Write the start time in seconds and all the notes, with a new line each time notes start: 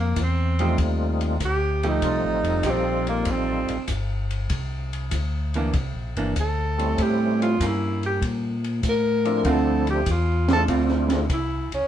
Already playing: F2
0.00 A#3
0.16 E2, kick, hi-hat pedal, ride
0.23 C4
0.59 F3 G3 A3 C4 D#4 F4 G4, ride
0.78 D#2, kick, ride
1.21 ride
1.40 D2, kick, hi-hat pedal, ride
1.45 G4
1.83 F3 A3 D#4 G4, ride
1.88 D#4
2.02 C2 G3 C4 D#4 F4 A4, kick, ride
2.23 A1
2.43 F1, ride
2.63 A#1 F3 D#4 G4, kick, hi-hat pedal, ride
2.70 C4
3.07 A#3, ride
3.25 A1, kick, ride
3.31 C4
3.69 A1, ride
3.88 G1, kick, hi-hat pedal, ride
4.31 ride
4.50 C2, kick, ride
4.93 ride
5.11 D2, kick, hi-hat pedal, ride
5.54 E3 A#3 D4, ride
5.73 C2, kick, ride
5.95 A#1
6.16 G1 E3 A#3 D4, ride
6.36 D2, kick, hi-hat pedal, ride
6.40 A4
6.78 G3 A3 C4 C#4 E4, ride
6.98 A2, kick, ride
7.02 G4
7.42 F4, ride
7.60 G2 G3 A#3 C#4, kick, hi-hat pedal, ride
7.66 E4
8.03 G4, ride
8.22 A#2, kick, ride
8.64 ride
8.83 A2, kick, hi-hat pedal, ride
8.89 A#4
9.25 F3 A3 C4 D4 E4, ride
9.44 D2 D3 A3 C4 F4, kick, ride
9.50 A4
9.87 G4, ride
10.06 E2, kick, hi-hat pedal, ride
10.11 F4
10.48 A3 C4 D4 E4 F4, snare, ride
10.53 A4
10.68 D2 D3 A3 C4 F4, kick, ride
10.88 snare
11.09 snare, ride
11.29 C2, kick, hi-hat pedal, ride
11.33 E4
11.72 C2 C#4, ride